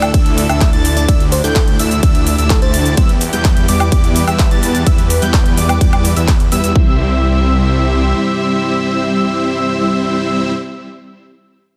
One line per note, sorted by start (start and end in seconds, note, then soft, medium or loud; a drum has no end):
0.00 0.12 D2 loud
0.00 2.94 D3 medium
0.00 0.11 A3 medium
0.00 0.11 D4 medium
0.00 2.94 D4 medium
0.00 0.11 E4 medium
0.00 6.72 E4 medium
0.00 1.07 A4 medium
0.00 0.11 D5 medium
0.00 0.11 E5 loud
0.00 0.11 E6 loud
0.00 closed hi-hat soft
0.00 high woodblock medium
0.00 shaker soft
0.14 0.47 D2 loud
0.14 0.47 D4 medium
0.14 0.47 E4 medium
0.14 0.47 D5 medium
0.14 0.47 E5 loud
0.14 0.47 E6 loud
0.14 kick loud
0.14 closed hi-hat medium
0.14 ride medium
0.14 shaker soft
0.26 closed hi-hat soft
0.38 open hi-hat loud
0.38 shaker medium
0.49 0.71 D2 loud
0.49 0.70 A3 medium
0.49 0.70 D4 medium
0.49 0.70 E4 medium
0.49 0.70 D5 medium
0.49 0.70 E5 loud
0.49 0.68 E5 medium
0.49 0.70 E6 loud
0.49 closed hi-hat soft
0.49 high woodblock medium
0.49 shaker soft
0.61 kick loud
0.61 clap loud
0.61 closed hi-hat medium
0.61 ride medium
0.61 shaker soft
0.73 1.06 D2 loud
0.73 1.06 A3 loud
0.73 1.06 D4 medium
0.73 1.06 E4 medium
0.73 1.06 D5 medium
0.73 1.06 A5 loud
0.73 1.06 A6 loud
0.73 closed hi-hat soft
0.85 open hi-hat loud
0.85 shaker medium
0.97 1.30 D5 medium
0.97 closed hi-hat soft
0.97 shaker soft
1.08 1.42 D2 loud
1.08 1.22 A3 medium
1.08 1.22 D4 medium
1.08 1.22 E4 medium
1.08 6.72 G4 medium
1.08 1.22 D5 medium
1.08 1.22 E5 loud
1.08 1.22 E6 loud
1.08 kick loud
1.08 closed hi-hat medium
1.08 ride medium
1.08 shaker soft
1.20 closed hi-hat soft
1.32 1.42 C5 medium
1.32 open hi-hat loud
1.32 shaker medium
1.44 1.77 D2 loud
1.44 1.77 A3 medium
1.44 1.77 D4 medium
1.44 1.77 E4 medium
1.44 1.62 A4 medium
1.44 1.77 D5 medium
1.44 1.77 G5 medium
1.44 1.77 G6 medium
1.44 closed hi-hat soft
1.44 shaker soft
1.56 kick loud
1.56 clap loud
1.56 closed hi-hat medium
1.56 ride medium
1.56 shaker soft
1.68 closed hi-hat soft
1.79 2.01 D2 loud
1.79 2.00 A3 medium
1.79 2.00 D4 medium
1.79 2.00 E4 medium
1.79 2.00 D5 medium
1.79 2.00 E5 loud
1.79 2.00 E6 loud
1.79 open hi-hat loud
1.79 shaker medium
1.91 closed hi-hat soft
1.91 shaker soft
2.03 2.36 D2 loud
2.03 2.36 D4 medium
2.03 2.36 E4 medium
2.03 2.36 D5 medium
2.03 2.36 E6 loud
2.03 kick loud
2.03 closed hi-hat medium
2.03 ride medium
2.03 shaker soft
2.15 closed hi-hat soft
2.27 open hi-hat loud
2.27 shaker medium
2.38 2.60 D2 loud
2.38 2.59 A3 loud
2.38 2.59 D4 medium
2.38 2.59 E4 medium
2.38 2.59 D5 medium
2.38 2.59 E5 loud
2.38 2.59 E6 loud
2.38 closed hi-hat soft
2.38 shaker soft
2.50 2.60 A4 medium
2.50 kick loud
2.50 clap loud
2.50 closed hi-hat medium
2.50 ride medium
2.50 shaker soft
2.62 2.95 D2 loud
2.62 2.95 A3 loud
2.62 2.95 D4 medium
2.62 2.95 E4 medium
2.62 3.02 C5 medium
2.62 2.95 D5 medium
2.62 2.95 A5 loud
2.62 2.95 A6 loud
2.62 closed hi-hat soft
2.74 open hi-hat loud
2.74 shaker medium
2.86 closed hi-hat soft
2.86 shaker soft
2.97 3.31 E2 loud
2.97 6.72 E3 medium
2.97 3.11 G3 medium
2.97 6.72 B4 loud
2.97 3.11 E6 loud
2.97 kick loud
2.97 closed hi-hat medium
2.97 ride medium
2.97 shaker soft
3.09 closed hi-hat soft
3.21 open hi-hat loud
3.21 shaker medium
3.33 3.66 E2 loud
3.33 3.66 G3 medium
3.33 3.66 B3 medium
3.33 3.66 E4 medium
3.33 3.66 B4 medium
3.33 3.66 G5 medium
3.33 3.66 G6 loud
3.33 closed hi-hat soft
3.33 shaker soft
3.45 kick loud
3.45 clap loud
3.45 closed hi-hat medium
3.45 ride medium
3.45 shaker soft
3.57 closed hi-hat soft
3.68 3.90 E2 loud
3.68 3.89 G3 medium
3.68 3.89 B3 medium
3.68 3.89 E4 medium
3.68 3.89 B4 medium
3.68 3.89 D5 loud
3.68 3.89 D6 loud
3.68 open hi-hat loud
3.68 shaker medium
3.80 closed hi-hat soft
3.80 high woodblock medium
3.80 shaker soft
3.92 4.25 E2 loud
3.92 4.25 G3 medium
3.92 4.25 B3 medium
3.92 4.25 E4 medium
3.92 4.25 B4 medium
3.92 4.25 D5 loud
3.92 4.25 D6 loud
3.92 kick loud
3.92 closed hi-hat medium
3.92 ride medium
3.92 shaker soft
4.04 closed hi-hat soft
4.16 open hi-hat loud
4.16 shaker medium
4.27 4.49 E2 loud
4.27 4.48 G3 medium
4.27 4.48 B3 medium
4.27 4.48 E4 medium
4.27 4.48 B4 medium
4.27 4.48 E5 loud
4.27 4.48 E6 loud
4.27 closed hi-hat soft
4.27 high woodblock medium
4.27 shaker soft
4.39 kick loud
4.39 clap loud
4.39 closed hi-hat medium
4.39 ride medium
4.39 shaker soft
4.51 4.84 E2 loud
4.51 4.84 G3 loud
4.51 4.84 B3 loud
4.51 4.84 E4 medium
4.51 4.84 B4 medium
4.51 4.84 A5 loud
4.51 4.84 A6 loud
4.51 closed hi-hat soft
4.63 open hi-hat loud
4.63 shaker medium
4.75 closed hi-hat soft
4.75 shaker soft
4.86 5.20 E2 loud
4.86 5.00 G3 medium
4.86 5.00 B3 medium
4.86 5.00 E4 medium
4.86 5.00 B4 medium
4.86 5.00 E5 loud
4.86 5.00 E6 loud
4.86 kick loud
4.86 closed hi-hat medium
4.86 ride medium
4.86 shaker soft
4.98 closed hi-hat soft
5.10 open hi-hat loud
5.10 shaker medium
5.22 5.55 E2 loud
5.22 5.54 G3 medium
5.22 5.54 B3 medium
5.22 5.54 E4 medium
5.22 5.54 B4 medium
5.22 5.54 G5 loud
5.22 5.55 G6 loud
5.22 closed hi-hat soft
5.22 shaker soft
5.34 kick loud
5.34 clap loud
5.34 closed hi-hat medium
5.34 ride medium
5.34 shaker soft
5.46 closed hi-hat soft
5.57 5.79 E2 loud
5.57 5.78 G3 medium
5.57 5.78 B3 medium
5.57 5.78 E4 medium
5.57 5.78 B4 medium
5.57 5.78 D5 loud
5.57 5.78 D6 loud
5.57 open hi-hat loud
5.57 shaker medium
5.69 closed hi-hat soft
5.69 high woodblock medium
5.69 shaker soft
5.81 6.14 E2 loud
5.81 6.14 G3 medium
5.81 6.14 B3 medium
5.81 6.14 E4 medium
5.81 6.14 B4 medium
5.81 6.14 D5 loud
5.81 6.14 D6 loud
5.81 kick loud
5.81 closed hi-hat medium
5.81 ride medium
5.81 shaker soft
5.93 closed hi-hat soft
5.93 high woodblock medium
6.05 open hi-hat loud
6.05 shaker medium
6.16 6.50 E2 loud
6.16 6.30 G3 medium
6.16 6.30 B3 medium
6.16 6.30 E4 medium
6.16 6.30 B4 medium
6.16 6.30 E5 medium
6.16 6.30 E6 medium
6.16 closed hi-hat soft
6.16 shaker soft
6.28 kick loud
6.28 clap loud
6.28 closed hi-hat medium
6.28 ride medium
6.28 shaker soft
6.40 closed hi-hat soft
6.52 6.61 E2 loud
6.52 6.62 G3 loud
6.52 6.62 B3 medium
6.52 6.62 E4 medium
6.52 6.62 B4 medium
6.52 6.62 E5 loud
6.52 6.62 E6 loud
6.52 open hi-hat loud
6.52 shaker medium
6.64 6.73 E2 loud
6.64 6.73 G3 medium
6.64 6.73 B3 medium
6.64 6.73 E4 medium
6.64 6.73 B4 medium
6.64 6.73 E5 loud
6.64 6.73 E6 loud
6.64 closed hi-hat soft
6.64 shaker soft
6.75 8.13 C2 loud
6.75 10.52 C3 medium
6.75 10.52 C4 medium
6.75 10.52 E4 medium
6.75 10.52 G4 medium
6.75 10.52 C5 medium
6.75 10.52 E5 loud
6.75 10.52 E5 medium
6.75 kick loud